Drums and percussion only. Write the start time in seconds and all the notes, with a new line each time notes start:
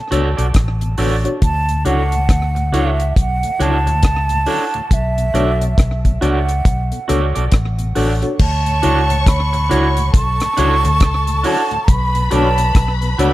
0.12 closed hi-hat
0.38 closed hi-hat
0.54 kick, cross-stick, closed hi-hat
0.81 closed hi-hat
0.98 open hi-hat
1.25 closed hi-hat
1.42 kick, closed hi-hat
1.69 closed hi-hat
1.85 closed hi-hat
2.12 closed hi-hat
2.29 kick, cross-stick, closed hi-hat
2.56 closed hi-hat
2.74 closed hi-hat
3.00 closed hi-hat
3.16 kick, closed hi-hat
3.43 closed hi-hat
3.60 closed hi-hat
3.87 closed hi-hat
4.03 kick, cross-stick, closed hi-hat
4.29 closed hi-hat
4.46 open hi-hat
4.74 closed hi-hat
4.91 kick, closed hi-hat
5.18 closed hi-hat
5.35 closed hi-hat
5.62 closed hi-hat
5.78 kick, cross-stick, closed hi-hat
6.05 kick, closed hi-hat
6.22 closed hi-hat
6.49 closed hi-hat
6.65 kick, closed hi-hat
6.92 closed hi-hat
7.09 closed hi-hat
7.36 closed hi-hat
7.52 kick, cross-stick, closed hi-hat
7.79 closed hi-hat
7.96 open hi-hat
8.22 closed hi-hat
8.39 kick, crash
8.66 closed hi-hat
8.83 closed hi-hat
9.10 closed hi-hat
9.27 kick, cross-stick, closed hi-hat
9.53 closed hi-hat
9.71 closed hi-hat
9.97 closed hi-hat
10.14 kick, closed hi-hat
10.40 cross-stick, closed hi-hat
10.57 closed hi-hat
10.85 closed hi-hat
11.00 kick, cross-stick, closed hi-hat
11.27 closed hi-hat
11.44 open hi-hat
11.71 closed hi-hat
11.88 kick, closed hi-hat
12.15 closed hi-hat
12.31 closed hi-hat
12.58 closed hi-hat
12.75 kick, cross-stick, closed hi-hat
13.02 closed hi-hat
13.19 closed hi-hat